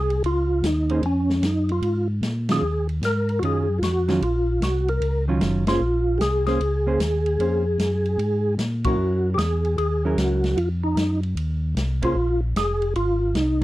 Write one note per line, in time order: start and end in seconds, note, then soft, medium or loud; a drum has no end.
0.00 0.22 C2 medium
0.00 0.23 G#4 loud
0.10 ride soft
0.23 0.62 C#2 medium
0.23 0.66 F4 medium
0.23 ride medium
0.62 1.02 D#2 medium
0.62 1.02 D#4 medium
0.62 snare medium
0.62 hi-hat pedal medium
0.62 ride medium
0.89 1.02 A#3 medium
0.89 1.03 C#4 soft
0.89 1.03 G#4 medium
0.89 1.03 C5 medium
0.89 ride soft
1.02 1.41 F2 medium
1.02 1.46 C#4 medium
1.02 ride medium
1.29 snare soft
1.42 1.81 F#2 medium
1.42 1.71 D#4 medium
1.42 snare medium
1.42 hi-hat pedal medium
1.42 ride medium
1.69 2.08 F4 medium
1.69 ride soft
1.82 2.21 G#2 medium
1.82 ride medium
2.21 2.61 A#2 medium
2.21 snare medium
2.21 hi-hat pedal medium
2.21 ride medium
2.49 2.62 D#3 soft
2.49 2.62 F#3 medium
2.49 2.62 C#4 medium
2.49 2.62 F4 medium
2.49 2.87 G#4 medium
2.49 snare medium
2.49 ride medium
2.61 3.01 D#2 medium
2.89 ride soft
3.02 3.41 G#2 medium
3.02 3.40 A#4 medium
3.02 snare medium
3.02 hi-hat pedal medium
3.02 ride medium
3.29 ride soft
3.39 3.81 F#2 medium
3.39 3.66 D#3 soft
3.39 3.43 F#4 medium
3.39 ride medium
3.44 3.66 F#3 medium
3.44 3.67 C#4 medium
3.44 3.67 F4 medium
3.44 3.80 G#4 medium
3.79 4.20 F2 medium
3.79 3.83 F4 medium
3.83 4.24 F#4 medium
3.83 snare medium
3.83 hi-hat pedal medium
3.83 ride medium
4.08 4.20 D#3 medium
4.08 4.21 F#3 medium
4.08 4.21 C#4 medium
4.08 4.21 F4 medium
4.08 snare medium
4.08 ride soft
4.21 4.60 A#1 medium
4.21 4.63 F4 medium
4.21 ride medium
4.61 5.00 C2 medium
4.61 4.89 F#4 medium
4.61 snare medium
4.61 hi-hat pedal medium
4.61 ride medium
4.88 5.25 A#4 medium
4.88 ride soft
5.00 5.39 C#2 medium
5.00 ride medium
5.28 5.65 D#3 medium
5.28 5.65 F#3 medium
5.28 5.65 C#4 medium
5.28 5.65 F4 medium
5.40 5.79 F#1 medium
5.40 snare medium
5.40 hi-hat pedal medium
5.40 ride medium
5.67 5.80 A#3 medium
5.67 5.80 C#4 medium
5.67 6.19 F4 loud
5.67 5.80 G#4 medium
5.67 5.80 C5 medium
5.67 snare medium
5.67 ride medium
5.80 6.19 A#1 medium
6.18 6.59 C2 medium
6.18 6.21 G4 medium
6.18 6.46 G#4 loud
6.18 snare medium
6.18 hi-hat pedal medium
6.18 ride medium
6.46 6.59 A#3 medium
6.46 6.59 C#4 medium
6.46 8.55 G#4 loud
6.46 6.59 G#4 medium
6.46 6.60 C5 medium
6.46 snare soft
6.46 ride soft
6.59 6.98 C#2 medium
6.59 ride medium
6.87 6.99 A#3 medium
6.87 6.99 C#4 medium
6.87 6.99 G#4 medium
6.87 6.99 C5 medium
6.99 7.38 D#2 medium
6.99 snare medium
6.99 hi-hat pedal medium
6.99 ride medium
7.26 ride soft
7.39 7.78 F2 medium
7.39 7.63 A#3 soft
7.39 7.63 C#4 soft
7.39 7.64 G#4 soft
7.39 7.64 C5 soft
7.39 ride medium
7.78 8.17 F#2 medium
7.78 snare medium
7.78 hi-hat pedal medium
7.78 ride medium
8.05 ride soft
8.18 8.57 G#2 medium
8.18 ride medium
8.58 8.97 A#2 medium
8.58 snare medium
8.58 hi-hat pedal medium
8.58 ride medium
8.84 9.36 F#3 medium
8.84 9.36 C#4 medium
8.84 9.37 E4 medium
8.84 9.30 F#4 medium
8.84 9.36 A#4 medium
8.84 kick medium
8.84 ride medium
8.97 9.36 F#2 medium
9.34 9.76 E2 medium
9.34 9.39 G4 medium
9.34 9.77 G#4 medium
9.38 snare medium
9.38 hi-hat pedal medium
9.38 ride medium
9.65 ride soft
9.77 10.16 D#2 medium
9.77 10.19 G#4 medium
9.77 ride medium
10.05 10.55 F#3 medium
10.05 10.55 C#4 medium
10.05 10.55 E4 medium
10.05 10.56 A#4 medium
10.17 10.56 C#2 medium
10.17 10.59 F#4 medium
10.17 snare medium
10.17 hi-hat pedal medium
10.17 ride medium
10.44 snare soft
10.44 ride soft
10.56 10.95 F2 medium
10.56 10.69 F4 medium
10.56 ride medium
10.84 11.20 D#4 medium
10.96 11.35 F#2 medium
10.96 snare medium
10.96 hi-hat pedal medium
10.96 ride medium
11.23 ride soft
11.35 11.74 D#2 medium
11.35 ride medium
11.75 12.14 C2 medium
11.75 snare medium
11.75 hi-hat pedal soft
11.75 ride medium
12.02 12.15 A#3 medium
12.02 12.15 C#4 soft
12.02 12.41 F4 medium
12.02 12.15 G#4 medium
12.02 12.15 C5 medium
12.02 kick medium
12.02 ride medium
12.15 12.54 A#1 medium
12.55 12.94 F1 medium
12.55 12.94 G#4 loud
12.55 snare medium
12.55 hi-hat pedal medium
12.55 ride medium
12.82 ride soft
12.95 13.34 G#1 medium
12.95 13.37 F4 medium
12.95 ride medium
13.34 13.64 C2 medium
13.34 13.64 D#4 medium
13.34 snare medium
13.34 hi-hat pedal soft
13.34 ride medium